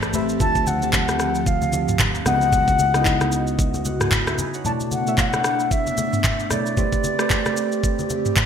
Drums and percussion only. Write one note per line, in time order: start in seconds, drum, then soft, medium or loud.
0.02 cross-stick medium
0.02 shaker soft
0.14 high conga medium
0.14 low conga medium
0.14 shaker medium
0.29 shaker medium
0.40 kick loud
0.40 low conga medium
0.40 shaker medium
0.55 kick medium
0.55 high conga soft
0.55 shaker medium
0.67 high conga medium
0.67 shaker medium
0.82 shaker medium
0.93 kick medium
0.93 clap loud
0.93 low conga medium
0.93 shaker medium
1.08 cross-stick medium
1.08 high conga medium
1.08 shaker medium
1.20 cross-stick medium
1.20 shaker medium
1.35 shaker soft
1.46 kick loud
1.46 shaker medium
1.62 high conga medium
1.62 shaker medium
1.73 high conga medium
1.73 shaker medium
1.88 mid tom medium
1.88 shaker medium
1.99 kick medium
1.99 clap loud
1.99 mid tom loud
1.99 high conga medium
1.99 shaker medium
2.15 shaker medium
2.26 cross-stick medium
2.26 high conga medium
2.26 low conga medium
2.26 shaker medium
2.41 shaker medium
2.52 kick loud
2.52 low conga medium
2.52 shaker medium
2.68 kick medium
2.68 high conga soft
2.68 shaker medium
2.79 high conga medium
2.79 shaker medium
2.94 cross-stick medium
2.94 shaker medium
3.05 kick loud
3.05 clap medium
3.05 low conga medium
3.05 shaker medium
3.21 cross-stick medium
3.21 high conga medium
3.21 shaker medium
3.32 shaker medium
3.47 shaker medium
3.59 kick loud
3.59 shaker medium
3.74 high conga medium
3.74 shaker medium
3.85 high conga medium
3.85 shaker medium
4.01 cross-stick medium
4.01 mid tom medium
4.01 shaker medium
4.12 kick loud
4.12 clap loud
4.12 mid tom medium
4.12 high conga medium
4.12 shaker medium
4.27 cross-stick loud
4.27 shaker soft
4.38 high conga medium
4.38 low conga medium
4.38 shaker medium
4.54 shaker medium
4.65 low conga medium
4.65 shaker medium
4.80 high conga soft
4.80 shaker medium
4.91 high conga medium
4.91 shaker medium
5.07 shaker medium
5.18 kick medium
5.18 clap medium
5.18 low conga medium
5.18 shaker medium
5.33 cross-stick medium
5.33 high conga medium
5.33 shaker medium
5.44 cross-stick loud
5.44 shaker medium
5.60 shaker medium
5.71 kick loud
5.71 shaker medium
5.87 high conga medium
5.87 shaker medium
5.97 high conga medium
5.97 shaker medium
6.13 mid tom medium
6.13 shaker medium
6.24 kick loud
6.24 clap loud
6.24 mid tom medium
6.24 high conga medium
6.24 shaker medium
6.39 shaker medium
6.50 cross-stick medium
6.50 high conga medium
6.50 low conga medium
6.50 shaker medium
6.66 shaker medium
6.77 kick loud
6.77 low conga medium
6.77 shaker medium
6.92 kick medium
6.92 high conga soft
6.92 shaker medium
7.04 high conga medium
7.04 shaker medium
7.19 cross-stick loud
7.19 shaker medium
7.30 kick loud
7.30 clap medium
7.30 low conga medium
7.30 shaker medium
7.45 cross-stick medium
7.45 high conga medium
7.45 shaker soft
7.57 shaker medium
7.72 shaker medium
7.84 kick loud
7.84 shaker medium
7.99 high conga medium
7.99 shaker medium
8.10 high conga medium
8.10 shaker medium
8.25 mid tom medium
8.25 shaker medium
8.37 kick loud
8.37 clap loud
8.37 mid tom loud
8.37 high conga medium
8.37 shaker medium